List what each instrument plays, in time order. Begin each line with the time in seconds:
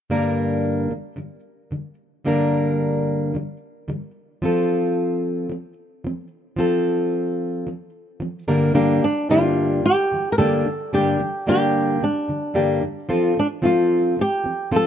0.10 steel-string acoustic guitar G2 D3 G3 A#3 D4 A#4
0.89 steel-string acoustic guitar G2 D3 G3
1.16 steel-string acoustic guitar G2 D3 G3
1.71 steel-string acoustic guitar G2 D3 G3
2.25 steel-string acoustic guitar G2 D3 G3 A#3 D4 A#4
3.34 steel-string acoustic guitar G2 D3 G3
3.88 steel-string acoustic guitar G2 D3 G3
4.42 steel-string acoustic guitar F3 C4 F4 A4
5.50 steel-string acoustic guitar F3 C4
6.04 steel-string acoustic guitar F3 C4
6.56 steel-string acoustic guitar F3 C4 F4 A4
7.67 steel-string acoustic guitar F3 C4
8.20 steel-string acoustic guitar F3 C4
8.48 steel-string acoustic guitar G2 D3 G3 A#3 D4 A#4
8.73 steel-string acoustic guitar G2 D3 G3 A#3 D4 G4
9.02 steel-string acoustic guitar G2 D3 G3, nylon-string guitar D4
9.29 steel-string acoustic guitar G2 D3 G3 A#3 D4 G4, nylon-string guitar F4
9.83 steel-string acoustic guitar G2 D3 G3, nylon-string guitar G4
10.12 steel-string acoustic guitar G2 D3 G3
10.32 nylon-string guitar A#4
10.38 steel-string acoustic guitar G2 D3 G3 A#3 D4 G4, nylon-string guitar A4
10.65 steel-string acoustic guitar G2 D3 G3
10.93 steel-string acoustic guitar G2 D3 G3 A#3 D4 G4, nylon-string guitar G4
11.19 steel-string acoustic guitar G2 D3 G3
11.46 steel-string acoustic guitar G2 D3 G3 A#3 D4 G4, nylon-string guitar G4
12.00 steel-string acoustic guitar G2 D3 G3, nylon-string guitar D4
12.28 steel-string acoustic guitar G2 D3 G3
12.54 steel-string acoustic guitar G2 D3 G3 A#3 D4 G4
12.83 steel-string acoustic guitar G2 D3
13.09 steel-string acoustic guitar F3 C4 F4 A4
13.35 steel-string acoustic guitar F3, nylon-string guitar D4
13.62 steel-string acoustic guitar F3 C4 F4 A4, nylon-string guitar F4
14.17 steel-string acoustic guitar F3 C4
14.21 nylon-string guitar G4
14.44 steel-string acoustic guitar F3 C4
14.72 steel-string acoustic guitar F3 C4 F4 A4
14.76 nylon-string guitar A4